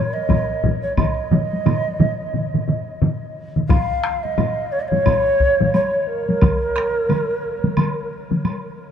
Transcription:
Already playing: C#5
0.13 D#5, taiko high
0.29 taiko, taiko low-mid, taiko high, high woodblock
0.50 taiko high
0.64 taiko, taiko low-mid, taiko high
0.81 C#5, taiko high
0.96 D#5, taiko, taiko low-mid, taiko mid, taiko high, high woodblock
1.31 taiko low-mid, taiko mid, taiko high
1.53 taiko high
1.66 taiko low-mid, taiko mid, taiko high, high woodblock
1.88 taiko high
2.00 taiko low-mid, taiko mid, taiko high
2.21 taiko high
2.34 taiko low-mid, taiko mid
2.54 taiko low-mid, taiko mid
2.68 taiko low-mid, taiko mid
3.02 taiko low-mid, taiko mid
3.56 taiko low-mid, taiko mid
3.69 F5, taiko, taiko low-mid, taiko high, high woodblock
4.04 taiko rim, high woodblock
4.23 D#5, taiko high
4.38 taiko low-mid, taiko high, high woodblock
4.72 C#5
4.80 D#5
4.88 C#5
4.92 taiko low-mid, taiko high
5.06 taiko, taiko low-mid, taiko high, high woodblock
5.40 taiko
5.61 taiko low-mid, taiko high
5.73 C#5, taiko high, high woodblock
6.02 C#5
6.07 A#4
6.29 taiko high
6.41 taiko, taiko mid, taiko high, high woodblock
6.76 taiko rim, high woodblock
7.09 taiko mid, taiko high, high woodblock
7.64 taiko mid, taiko high
7.77 taiko mid, taiko high, high woodblock
8.31 taiko mid, taiko high
8.45 taiko high, high woodblock

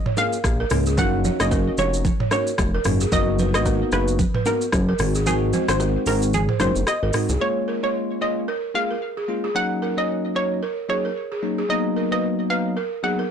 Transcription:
0.06 C#5, mid tom
0.17 A#3 C#4 F4 G#4 A#4 F5, low bongo, shaker
0.33 shaker
0.44 A#1, kick, cross-stick, high bongo, shaker
0.60 A#4
0.70 C#2 A#3 C#4 F4 G#4, cross-stick, mid tom, open hi-hat, shaker
0.86 G#4, shaker
0.97 F#1 A#3 C#4 D#4 F#4 A#4 F#5, kick, low conga, shaker
1.25 C#5, low conga, shaker
1.40 F#1 A#3 C#4 D#4 F#4 C#5 D#5, cross-stick, low bongo, shaker
1.51 A#4, kick, high bongo, shaker
1.78 F1 A#3 C#4 D#4 F#4 C#5, low bongo, shaker
1.94 shaker
2.05 kick, low conga, shaker
2.20 C#5, mid tom
2.31 A#3 C#4 D#4 F#4 A#4 C#5, cross-stick, low bongo, shaker
2.47 shaker
2.58 F1, kick, cross-stick, high bongo, shaker
2.74 A#4
2.84 F#1 A#3 C#4 D#4 F#4, cross-stick, mid tom, open hi-hat, shaker
3.01 G#4, shaker
3.12 F#1 A#3 B3 D#4 F#4 A#4 D#5, kick, low conga, shaker
3.39 B4, low conga, shaker
3.54 G#1 A#3 B3 D#4 F#4 B4 D#5, cross-stick, low bongo, shaker
3.66 A#4, kick, high bongo, shaker
3.92 F#1 A#3 B3 D#4 F#4 B4, cross-stick, low bongo, shaker
4.08 shaker
4.19 kick, low conga, shaker
4.34 B4, mid tom
4.46 A#3 B3 D#4 F#4 A#4, low bongo, shaker
4.61 shaker
4.72 F#1, kick, cross-stick, high bongo, shaker
4.89 A#4
4.99 G#1 G#3 C4 D#4 F#4, cross-stick, mid tom, open hi-hat, shaker
5.15 G#4, shaker
5.26 G#3 C4 D#4 F#4 G#4 A#4, low conga, shaker
5.53 C5, low conga, shaker
5.68 G#1 G#3 C4 D#4 F#4 C5, cross-stick, low bongo, shaker
5.80 A#4, high bongo, shaker
6.06 G#1 G#3 C4 D#4 F#4 A#4 C5, open hi-hat, low bongo, shaker
6.22 shaker
6.34 G#4, low conga, shaker
6.49 C5, mid tom
6.60 F#1 G#3 C4 D#4 F#4 A#4 C5, cross-stick, low bongo, shaker
6.76 F#1, shaker
6.87 D#5, cross-stick, high bongo, shaker
7.03 G#1 A#4
7.13 G#3 C4 D#4 F#4, cross-stick, mid tom, open hi-hat, shaker
7.29 C2 G#4, shaker
7.40 G#3 A#3 C#4 F4 C#5
7.68 A#4
7.83 G#3 A#3 C#4 F4 C#5
8.21 G#3 A#3 C#4 F4 C#5 D#5
8.48 A#4
8.74 G#3 A#3 C#4 F4 G#4 F5
8.91 A#4
9.17 G#4
9.28 G#3 A#3 C#4 F4
9.44 G#4
9.55 F#3 A#3 C#4 D#4 F#5
9.82 A#4
9.97 F#3 A#3 C#4 D#4 C#5 D#5
10.35 F#3 A#3 C#4 D#4 C#5
10.63 A#4
10.89 F#3 A#3 C#4 D#4 G#4 C#5
11.05 A#4
11.32 G#4
11.42 F#3 A#3 C#4 D#4
11.58 G#4
11.69 F#3 A#3 B3 D#4 D#5
11.96 A#4
12.11 F#3 A#3 B3 D#4 B4 D#5
12.49 F#3 A#3 B3 D#4 B4 F5
12.77 A#4
13.03 F#3 A#3 B3 D#4 G#4 F#5
13.19 A#4

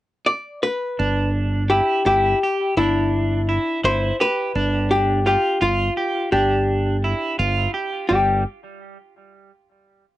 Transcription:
0.26 D5
0.63 B4
0.99 G1 D4
1.70 E4 G4
2.06 G1 E4 G4
2.43 G4
2.77 G1 D4 E4
3.49 E4
3.84 G1 E4 C5
4.20 G4 B4
4.55 G1 D4
4.91 G4
5.26 F4 G4
5.61 G1 F4
5.97 G4
6.32 G1 D4 G4
7.04 E4
7.39 G1 F4
7.74 G4
8.09 G1 G3 G4

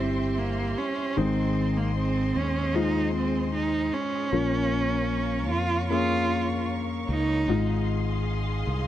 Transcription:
Already playing: G1 C3 G3 C4 E4 G4 C5 E5 C6
0.00 C4
0.39 A#3
0.78 C#4
1.17 G#1 G#2 D#3 G#3 C4 D#4 G#4 C5 D#5
1.77 A#3
1.97 C4
2.36 D#2 C#4
2.74 G#3 D#4 F4 C5
3.15 C4
3.54 D#4
3.93 C#4
4.32 A#1 A#2 F3 A#3 C#4 F4 A#4 C#5 F5 C#6
5.51 F2 F4
5.89 A#3 C#4 F4 G#4
7.09 C#2 D#4
7.48 G#1 G#2 G#3 D#4 F4 G#4 D#5 F5 C6
8.67 C2

